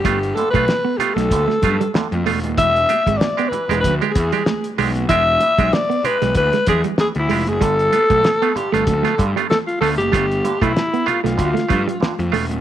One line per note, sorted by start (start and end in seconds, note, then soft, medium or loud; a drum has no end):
0.00 0.36 G4 medium
0.05 0.32 G1 loud
0.05 0.17 G3 medium
0.05 0.18 A3 medium
0.05 0.18 B3 medium
0.05 0.19 F4 medium
0.05 kick loud
0.05 closed hi-hat medium
0.23 closed hi-hat soft
0.35 0.50 G2 medium
0.35 0.51 D3 medium
0.35 0.50 A4 medium
0.35 muted clean electric guitar stroke soft
0.35 closed hi-hat medium
0.35 muted conga medium
0.50 0.66 B1 medium
0.50 0.63 A3 medium
0.50 0.99 B4 loud
0.50 kick loud
0.55 0.65 A3 medium
0.55 0.65 B3 medium
0.55 0.65 F4 medium
0.55 closed hi-hat soft
0.68 snare loud
0.68 high conga medium
0.85 0.94 B3 medium
0.97 1.13 A3 medium
0.97 1.13 B3 medium
0.97 1.13 F4 loud
0.97 1.16 G4 medium
0.97 muted clean electric guitar stroke soft
0.97 muted picked electric bass stroke soft
0.97 closed hi-hat medium
1.15 1.28 B1 medium
1.15 1.26 A3 medium
1.15 2.10 A4 medium
1.15 snare soft
1.15 closed hi-hat soft
1.31 1.46 D2 medium
1.31 1.45 G2 medium
1.31 1.45 D3 medium
1.31 kick medium
1.31 closed hi-hat medium
1.31 muted conga medium
1.48 1.58 A3 medium
1.48 snare soft
1.62 1.78 G2 medium
1.62 1.77 A3 medium
1.62 1.77 B3 medium
1.62 1.77 F4 medium
1.62 muted clean electric guitar stroke soft
1.62 kick medium
1.62 closed hi-hat loud
1.62 muted conga soft
1.62 low conga medium
1.81 1.90 G3 medium
1.81 closed hi-hat soft
1.94 2.08 G2 medium
1.94 2.08 D3 medium
1.94 snare loud
1.94 high conga medium
2.12 2.24 F2 medium
2.12 closed hi-hat soft
2.12 high conga medium
2.25 2.43 E1 medium
2.25 2.39 A3 medium
2.25 2.38 A3 medium
2.25 2.39 B3 medium
2.25 2.40 F4 medium
2.25 open hi-hat medium
2.43 2.55 D#1 medium
2.43 2.50 B3 soft
2.43 2.50 F4 soft
2.43 closed hi-hat soft
2.43 high conga medium
2.58 2.84 E1 loud
2.58 2.71 E3 soft
2.58 2.70 E3 medium
2.58 3.19 E5 loud
2.58 kick loud
2.58 closed hi-hat loud
2.76 closed hi-hat soft
2.89 3.02 D4 medium
2.89 3.03 G4 medium
2.89 muted clean electric guitar stroke soft
2.89 closed hi-hat medium
2.89 muted conga medium
3.07 3.18 G#1 medium
3.07 3.17 G#3 medium
3.07 kick medium
3.07 closed hi-hat medium
3.17 3.50 D5 loud
3.17 snare loud
3.17 high conga medium
3.37 3.48 G#3 medium
3.37 3.48 B3 medium
3.37 3.48 D4 medium
3.37 3.48 G4 medium
3.37 closed hi-hat soft
3.48 3.65 E3 medium
3.48 3.80 B4 medium
3.48 muted picked electric bass stroke soft
3.53 muted clean electric guitar stroke soft
3.53 closed hi-hat medium
3.69 3.81 E1 medium
3.69 3.80 G#3 medium
3.69 3.80 D4 medium
3.69 3.80 G4 medium
3.69 snare soft
3.69 closed hi-hat medium
3.80 3.99 D2 medium
3.80 3.95 B4 loud
3.80 kick medium
3.80 closed hi-hat medium
3.85 muted conga medium
3.85 low conga medium
4.01 4.11 G#3 medium
4.01 4.12 D4 medium
4.01 4.12 G4 medium
4.01 closed hi-hat soft
4.11 4.72 G#4 medium
4.11 muted conga soft
4.15 4.30 E2 loud
4.15 4.29 E3 medium
4.15 muted clean electric guitar stroke soft
4.15 kick loud
4.15 closed hi-hat medium
4.32 4.42 G3 medium
4.32 4.43 G#3 medium
4.32 4.43 D4 medium
4.32 4.43 G4 medium
4.32 closed hi-hat soft
4.46 snare loud
4.46 high conga medium
4.64 closed hi-hat soft
4.78 5.05 B1 medium
4.78 4.91 G#3 medium
4.78 4.90 G#3 medium
4.78 4.91 D4 medium
4.78 4.92 G4 medium
4.78 open hi-hat medium
4.95 closed hi-hat soft
4.95 high conga medium
5.09 5.36 E1 loud
5.09 5.21 E3 medium
5.09 5.23 G#3 medium
5.09 5.23 D4 medium
5.09 5.23 G4 medium
5.09 5.75 E5 loud
5.09 kick loud
5.09 closed hi-hat loud
5.40 5.55 E3 medium
5.40 muted clean electric guitar stroke soft
5.40 closed hi-hat medium
5.40 muted conga medium
5.58 5.70 B1 medium
5.58 5.68 G#3 medium
5.58 5.69 G#3 medium
5.58 5.69 D4 medium
5.58 5.69 G4 medium
5.58 kick loud
5.58 closed hi-hat soft
5.73 6.07 D5 loud
5.73 snare loud
5.73 high conga medium
5.90 5.99 B3 medium
5.90 closed hi-hat soft
6.04 6.17 G#3 medium
6.04 6.17 D4 medium
6.04 6.18 G4 medium
6.04 6.36 B4 loud
6.04 muted picked electric bass stroke soft
6.04 muted clean electric guitar stroke soft
6.04 closed hi-hat medium
6.22 6.34 B1 loud
6.22 6.31 G#3 medium
6.22 snare soft
6.22 closed hi-hat medium
6.35 6.50 D2 medium
6.35 6.50 E3 medium
6.35 6.65 B4 loud
6.35 kick medium
6.35 closed hi-hat medium
6.35 muted conga medium
6.53 6.63 G#3 medium
6.53 snare soft
6.53 closed hi-hat soft
6.67 6.82 E2 medium
6.67 6.81 G#3 medium
6.67 6.81 D4 medium
6.67 6.81 G4 medium
6.67 6.82 G#4 medium
6.67 muted clean electric guitar stroke soft
6.67 kick loud
6.67 closed hi-hat medium
6.67 muted conga soft
6.67 low conga medium
6.84 6.94 G3 medium
6.84 6.90 D4 soft
6.84 6.90 G4 soft
6.84 closed hi-hat soft
6.98 7.12 E3 medium
6.98 7.08 G#4 medium
6.98 snare loud
6.98 high conga medium
7.15 7.27 D2 medium
7.15 7.50 E4 medium
7.15 closed hi-hat soft
7.29 7.45 F1 medium
7.29 7.41 G#3 medium
7.29 7.43 G#3 medium
7.29 7.44 D4 medium
7.29 7.44 G4 medium
7.29 open hi-hat medium
7.47 7.61 F#1 medium
7.47 7.53 D4 soft
7.47 7.53 G4 soft
7.47 7.64 G#4 medium
7.47 closed hi-hat medium
7.47 high conga medium
7.61 7.88 G1 loud
7.61 7.74 G2 medium
7.61 7.74 D3 soft
7.61 7.73 G3 medium
7.61 8.58 A4 loud
7.61 kick loud
7.61 closed hi-hat medium
7.79 closed hi-hat soft
7.93 8.06 B3 medium
7.93 8.06 F4 medium
7.93 muted clean electric guitar stroke soft
7.93 closed hi-hat medium
7.93 muted conga medium
8.10 8.22 B1 medium
8.10 8.20 A3 medium
8.10 kick loud
8.10 closed hi-hat soft
8.24 snare loud
8.24 high conga medium
8.42 8.52 A3 medium
8.42 8.51 B3 medium
8.42 8.52 B3 medium
8.42 8.53 F4 medium
8.42 closed hi-hat soft
8.55 8.69 G2 medium
8.55 8.69 D3 medium
8.55 8.75 G4 medium
8.55 muted clean electric guitar stroke soft
8.55 muted picked electric bass stroke soft
8.55 closed hi-hat medium
8.72 8.85 G1 medium
8.72 8.82 A3 medium
8.72 8.84 A3 medium
8.72 8.84 B3 medium
8.72 8.84 F4 medium
8.72 9.24 A4 medium
8.72 snare soft
8.72 closed hi-hat medium
8.87 9.02 D2 medium
8.87 kick medium
8.87 closed hi-hat medium
8.87 muted conga medium
8.87 low conga medium
9.03 9.13 A3 medium
9.03 9.15 A3 medium
9.03 9.15 B3 medium
9.03 9.15 F4 medium
9.03 snare soft
9.03 closed hi-hat soft
9.18 9.32 G2 medium
9.18 9.34 G2 medium
9.18 9.32 D3 medium
9.18 muted clean electric guitar stroke soft
9.18 kick medium
9.18 closed hi-hat medium
9.18 muted conga soft
9.36 9.45 G3 medium
9.36 9.47 A3 medium
9.36 9.47 B3 medium
9.36 9.47 F4 medium
9.36 closed hi-hat soft
9.50 9.58 A4 medium
9.50 snare loud
9.50 high conga medium
9.67 9.80 F4 medium
9.67 closed hi-hat soft
9.81 9.96 D2 medium
9.81 9.93 A3 medium
9.81 9.95 A3 medium
9.81 9.95 B3 medium
9.81 9.95 F4 loud
9.81 9.89 A4 medium
9.81 open hi-hat medium
9.98 10.10 F#1 medium
9.98 10.64 G4 medium
9.98 closed hi-hat soft
9.98 high conga medium
10.12 10.40 G1 loud
10.12 10.24 G3 medium
10.12 10.26 A3 medium
10.12 10.26 B3 medium
10.12 10.26 F4 medium
10.12 kick loud
10.12 closed hi-hat loud
10.31 closed hi-hat soft
10.45 10.58 G2 medium
10.45 10.58 D3 medium
10.45 muted clean electric guitar stroke soft
10.45 closed hi-hat medium
10.45 muted conga medium
10.61 10.73 B1 medium
10.61 10.72 A3 medium
10.61 10.71 A3 medium
10.61 10.72 B3 medium
10.61 11.09 E4 medium
10.61 10.72 F4 medium
10.61 kick loud
10.61 closed hi-hat medium
10.76 snare loud
10.76 high conga medium
10.94 11.03 B3 medium
10.94 closed hi-hat soft
11.06 11.20 A3 medium
11.06 11.20 B3 medium
11.06 11.20 F4 loud
11.06 11.23 F4 medium
11.06 muted clean electric guitar stroke soft
11.06 muted picked electric bass stroke soft
11.06 closed hi-hat medium
11.24 11.36 B1 medium
11.24 11.33 A3 medium
11.24 12.28 F4 medium
11.24 snare soft
11.24 closed hi-hat medium
11.38 11.54 D2 medium
11.38 11.51 G2 medium
11.38 11.51 D3 medium
11.38 kick medium
11.38 closed hi-hat medium
11.38 muted conga medium
11.54 11.64 A3 medium
11.54 snare soft
11.54 closed hi-hat soft
11.68 11.85 G2 loud
11.68 11.83 A3 medium
11.68 11.83 B3 medium
11.68 11.83 F4 medium
11.68 muted clean electric guitar stroke soft
11.68 kick loud
11.68 closed hi-hat medium
11.68 low conga medium
11.87 11.97 G3 medium
11.87 11.93 B3 soft
11.87 11.93 F4 soft
11.87 closed hi-hat soft
12.00 12.14 G2 soft
12.00 12.14 D3 medium
12.00 snare loud
12.00 high conga medium
12.19 12.31 F2 medium
12.19 closed hi-hat soft
12.19 high conga medium
12.32 12.50 E1 medium
12.32 12.46 A3 medium
12.32 12.45 A3 medium
12.32 12.46 B3 medium
12.32 12.46 F4 medium
12.32 open hi-hat medium
12.49 12.61 D#1 medium
12.49 closed hi-hat soft
12.49 high conga medium